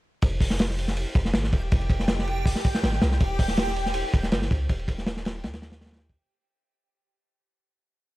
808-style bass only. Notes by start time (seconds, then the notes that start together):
0.23 F1
1.15 F1
1.34 G#1
1.53 D#1
1.72 F1
2.83 G#1
3.02 C2
3.21 D#1
4.14 D#1
4.32 G1
4.51 C#2
4.69 D#1
5.44 D#2